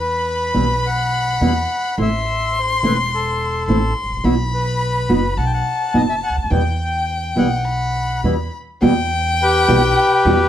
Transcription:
Already playing: upright bass E2, violin B5
0.00 bandoneon B4
0.54 upright bass B1, nylon-string guitar B2 E3 G3 B3 E4
0.86 bandoneon F#5
1.41 upright bass E2, nylon-string guitar B2 E3 G3 B3 E4
1.98 upright bass A1, nylon-string guitar E3 A3 C4 E4, violin C6
2.02 bandoneon E5
2.58 bandoneon C5
2.83 upright bass E1, nylon-string guitar E3 A3 C4 E4, bandoneon B4
3.15 bandoneon A4
3.68 upright bass A1, nylon-string guitar E3 A3 C4 E4, violin C6
4.03 upright bass G#1
4.10 upright bass A1
4.17 upright bass A#1
4.24 upright bass B1, nylon-string guitar B2 E3 B3 E4 F#4, violin B5
4.54 bandoneon B4
5.09 upright bass F#1, nylon-string guitar B2 F#3 B3 D#4 F#4
5.37 upright bass B1, bandoneon F#5, violin A5
5.46 bandoneon G5
5.54 bandoneon F#5
5.94 upright bass F#1, nylon-string guitar B2 F#3 B3 D#4 F#4, bandoneon D#5
6.09 bandoneon E5
6.23 bandoneon F#5
6.30 upright bass C#2
6.37 upright bass D2
6.44 upright bass D#2
6.50 upright bass E2, nylon-string guitar B2 E3 G3 B3 E4, violin G5, bandoneon G5
7.35 upright bass B1, nylon-string guitar B2 E3 G3 B3 E4, bandoneon F#5
7.65 violin B5
8.23 upright bass E2, nylon-string guitar B2 E3 G3 B3 E4
8.82 upright bass E2, nylon-string guitar B2 E3 G3 B3 F#4, violin G5
9.42 bandoneon G4 B4
9.68 upright bass B1, nylon-string guitar B2 E3 G3 B3 F#4
10.25 upright bass E2, nylon-string guitar B2 E3 G3 B3 F#4

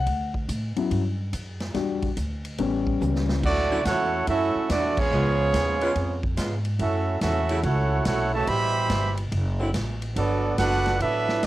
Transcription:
Already playing: grand piano F#5
0.06 upright bass D2, kick, ride
0.34 kick
0.49 upright bass A2, kick, hi-hat pedal, ride
0.76 grand piano F#3 C#4 E4, muted upright bass stroke, ride
0.91 upright bass G2, kick, ride
1.33 upright bass F#2, kick, hi-hat pedal, ride
1.60 snare, ride
1.74 upright bass E2, grand piano G3 D4 F#4, kick, snare, ride
2.02 kick, ride
2.17 upright bass D2, kick, hi-hat pedal, ride
2.45 ride
2.58 upright bass A1, grand piano G3 B3 C#4, kick, ride
2.87 kick
3.01 upright bass C#2, hi-hat pedal, high tom
3.16 snare
3.29 snare
3.43 upright bass D2, trombone section F#3 A3 D4, trumpet section A3 E4 F#4 D5, kick, crash
3.70 saxophone section D3 F#3 C#4 E4
3.85 upright bass E2, trombone section A3 C#4 F#4, trumpet section E4 A4 C#5 F#5, kick, snare, hi-hat pedal, ride
4.27 upright bass F#2, trombone section A3 C#4 E4, trumpet section C#4 F#4 A4 E5, kick, ride
4.55 muted upright bass stroke
4.69 upright bass E2, trombone section F#3 A3 D4, trumpet section A3 E4 F#4 D5, kick, snare, hi-hat pedal, ride
4.97 trombone section F3 G#3 C#4, trumpet section B3 F4 G#4 C#5, kick, crash
5.11 upright bass C#2, saxophone section C#3 G#3 B3 F4
5.54 upright bass D#2, kick, snare, hi-hat pedal, ride
5.81 saxophone section C#3 G#3 B3 F4, ride
5.95 upright bass F2, kick, ride
6.23 kick
6.37 upright bass G#2, saxophone section C#3 G#3 B3 F4, kick, snare, hi-hat pedal, ride
6.65 ride
6.79 upright bass F#2, trombone section A3 C#4 E4, trumpet section C#4 F#4 A4 E5, kick, ride
7.20 upright bass E2, trombone section A3 C#4 E4, trumpet section C#4 F#4 A4 E5, kick, snare, hi-hat pedal, ride
7.49 saxophone section C#3 F#3 A3 E4, ride
7.63 upright bass C#2, trombone section A3 C#4 F#4, trumpet section E4 A4 C#5 F#5, kick, ride
8.05 upright bass B1, trombone section A3 C#4 F#4, trumpet section E4 A4 C#5 F#5, kick, snare, hi-hat pedal, ride
8.33 trombone section C#3 E3 A3, trumpet section F#4 C#5 E5 A5
8.47 upright bass A1, trombone section B2 E3 G3, trumpet section G4 C5 E5 B5, kick, ride
8.90 upright bass G1, kick, snare, hi-hat pedal, ride
9.17 ride
9.32 upright bass F#1, kick, ride
9.59 saxophone section D3 F#3 C4 E4
9.74 upright bass A1, kick, snare, hi-hat pedal, ride
10.02 ride
10.15 upright bass G1, trombone section F#3 B3 D4, trumpet section B3 F#4 A4 D5, kick, ride
10.57 upright bass F#1, trombone section B3 D4 F#4, trumpet section D4 A4 B4 F#5, kick, snare, hi-hat pedal, ride
10.72 snare
10.86 snare, ride
11.00 upright bass A1, trombone section F#3 B3 E4, trumpet section D4 A4 B4 E5, kick, ride
11.29 snare
11.42 upright bass B1, trombone section F#3 B3 D4, kick, snare, hi-hat pedal, ride

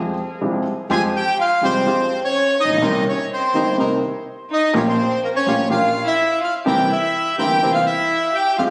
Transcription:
Already playing: upright bass F2, grand piano F2 F3 G#3 C4 G4
0.41 upright bass C2, grand piano C2 C3 F3 G#3 C4 G4
0.89 upright bass F2, grand piano F2 F3 G#3 C4 G4, bandoneon G#3 F4 G4 G#5, violin G#4
1.16 violin G4, bandoneon G5
1.39 violin F4, bandoneon F5
1.61 upright bass C2, grand piano C2 C3 F3 G#3 C4 G4, bandoneon G#3 F4 G4 C5, violin C4
1.86 upright bass F2, grand piano F2 F3 G#3 C4 G4, bandoneon G#3 F4 G4
2.25 violin C#4, bandoneon C#5
2.59 violin D#4, bandoneon D#5
2.65 upright bass A1, grand piano A1
2.70 upright bass A#1, grand piano A#1
2.76 upright bass B1, grand piano B1
2.82 upright bass C2, grand piano C2 C3 D#3 A#3 C4 G4, bandoneon C4 D#4 A#4
3.07 violin C#4, bandoneon C#5
3.32 violin C4, bandoneon C5
3.54 upright bass G1, grand piano G1 G2 D#3 A#3 C4 G4, bandoneon C4 D#4 A#4
3.78 upright bass C2, grand piano C2 C3 D#3 A#3 C4 G4, bandoneon C4 D#4 A#4
4.50 violin D#4, bandoneon D#5
4.73 grand piano A#1 A#2 F3 A#3 C#4 G4, upright bass A#1, bandoneon A#3 F4 G4 C#5, violin C#4
4.85 violin C4, bandoneon C5
5.23 violin A#3, bandoneon A#4
5.33 violin C#4, bandoneon C#5
5.46 upright bass A#1, grand piano A#1 A#2 F3 A#3 C#4 G4, bandoneon A#3 F4 G4
5.70 grand piano A#1 A#2 F3 A#3 C#4 G4, upright bass A#1, bandoneon A#3 F4 G4 F5, violin F4
6.04 violin E4, bandoneon E5
6.40 violin F4, bandoneon F5
6.64 grand piano C2 C3 E3 A#3 C4 G4, upright bass C2, bandoneon C4 E4 A#4 G5, violin G4
6.88 violin E4
6.92 bandoneon E5
7.36 grand piano G1 G2 E3 A#3 C4 G4, upright bass G1, bandoneon C4 E4 A#4 G5, violin G4
7.63 upright bass C2, grand piano C2 C3 E3 A#3 C4 G4, bandoneon C4 E4 A#4
7.72 violin F4, bandoneon F5
7.85 violin E4, bandoneon E5
8.33 violin G4, bandoneon G5
8.57 upright bass F2, grand piano F2 F3 G#3 C4 G4, bandoneon G#3 F4 G4 F5, violin F4

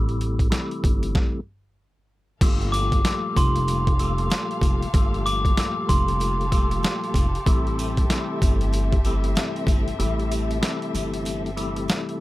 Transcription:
Already playing: upright bass A1, tonewheel organ C3 E3 G3 A3
0.09 closed hi-hat
0.21 closed hi-hat
0.39 kick, closed hi-hat
0.50 tonewheel organ C3 E3 G3 A3, snare, closed hi-hat
0.71 closed hi-hat
0.84 upright bass G1, kick, closed hi-hat
1.03 closed hi-hat
1.15 kick, snare
2.41 upright bass G1, tonewheel organ A#2 F3 G3 A3, string section A#2 G4 A4 F5, kick, closed hi-hat, crash, sleigh bells
2.62 closed hi-hat
2.72 glockenspiel D6, closed hi-hat, sleigh bells
2.92 kick, closed hi-hat
3.05 tonewheel organ A#2 F3 G3 A3, snare, closed hi-hat, sleigh bells
3.37 upright bass F1, glockenspiel C6, kick, closed hi-hat, sleigh bells
3.56 closed hi-hat
3.67 closed hi-hat, sleigh bells
3.87 kick, closed hi-hat
3.99 tonewheel organ A#2 F3 G3 A3, closed hi-hat, sleigh bells
4.18 closed hi-hat
4.30 snare, closed hi-hat, sleigh bells
4.51 closed hi-hat
4.62 upright bass F1, kick, closed hi-hat, sleigh bells
4.82 closed hi-hat
4.93 upright bass G1, tonewheel organ A#2 F3 G3 A3, kick, closed hi-hat, sleigh bells
5.14 closed hi-hat
5.26 glockenspiel D6, closed hi-hat, sleigh bells
5.45 kick, closed hi-hat
5.57 tonewheel organ A#2 F3 G3 A3, snare, closed hi-hat, sleigh bells
5.89 upright bass F1, glockenspiel C6, kick, closed hi-hat, sleigh bells
6.08 closed hi-hat
6.20 closed hi-hat, sleigh bells
6.41 closed hi-hat
6.51 tonewheel organ A#2 F3 G3 A3, kick, closed hi-hat, sleigh bells
6.71 closed hi-hat
6.83 snare, closed hi-hat, sleigh bells
7.04 closed hi-hat
7.14 upright bass F1, kick, closed hi-hat, sleigh bells
7.35 closed hi-hat
7.46 upright bass A1, tonewheel organ C3 E3 G3 A3, string section C4 E5, kick, closed hi-hat, sleigh bells
7.67 closed hi-hat
7.79 closed hi-hat, sleigh bells
7.97 kick, closed hi-hat
8.09 tonewheel organ C3 E3 G3 A3, snare, closed hi-hat, sleigh bells
8.42 upright bass G1, kick, closed hi-hat, sleigh bells
8.61 closed hi-hat
8.73 closed hi-hat, sleigh bells
8.93 kick, closed hi-hat
9.04 tonewheel organ C3 E3 G3 A3, closed hi-hat, sleigh bells
9.24 closed hi-hat
9.35 snare, closed hi-hat, sleigh bells
9.56 closed hi-hat
9.67 upright bass G1, kick, closed hi-hat, sleigh bells
9.88 closed hi-hat
9.98 upright bass A1, tonewheel organ C3 E3 G3 A3, closed hi-hat, sleigh bells
10.20 closed hi-hat
10.31 closed hi-hat, sleigh bells
10.51 closed hi-hat
10.61 tonewheel organ C3 E3 G3 A3, snare, closed hi-hat, sleigh bells
10.82 closed hi-hat
10.94 upright bass G1, closed hi-hat, sleigh bells
11.14 closed hi-hat
11.25 closed hi-hat, sleigh bells
11.46 closed hi-hat
11.56 tonewheel organ C3 E3 G3 A3, closed hi-hat, sleigh bells
11.76 closed hi-hat
11.88 snare, closed hi-hat, sleigh bells
12.09 closed hi-hat

